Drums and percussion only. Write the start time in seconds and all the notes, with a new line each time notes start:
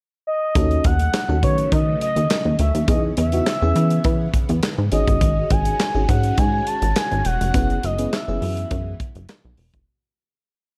0.55 kick, closed hi-hat
0.71 closed hi-hat
0.84 kick, closed hi-hat
0.99 closed hi-hat
1.14 snare, clap, closed hi-hat
1.43 kick, closed hi-hat
1.58 closed hi-hat
1.72 kick, closed hi-hat
2.01 closed hi-hat
2.16 closed hi-hat
2.30 snare, clap, closed hi-hat
2.59 closed hi-hat
2.75 closed hi-hat
2.88 kick, closed hi-hat
3.17 closed hi-hat
3.32 closed hi-hat
3.46 snare, clap, closed hi-hat
3.76 closed hi-hat
3.90 closed hi-hat
4.04 kick, closed hi-hat
4.34 kick, closed hi-hat
4.49 closed hi-hat
4.63 snare, clap, closed hi-hat
4.92 closed hi-hat
5.08 kick, closed hi-hat
5.21 kick, closed hi-hat
5.50 kick, closed hi-hat
5.65 closed hi-hat
5.80 snare, clap, closed hi-hat
6.09 kick, closed hi-hat
6.23 closed hi-hat
6.38 kick, closed hi-hat
6.67 closed hi-hat
6.82 closed hi-hat
6.96 snare, clap, closed hi-hat
7.11 closed hi-hat
7.25 closed hi-hat
7.41 closed hi-hat
7.54 kick, closed hi-hat
7.70 closed hi-hat
7.83 closed hi-hat
7.98 closed hi-hat
8.13 snare, clap, closed hi-hat
8.42 open hi-hat
8.57 closed hi-hat
8.71 kick, closed hi-hat
9.00 kick, closed hi-hat
9.15 closed hi-hat
9.29 snare, clap, closed hi-hat
9.57 open hi-hat
9.74 kick, closed hi-hat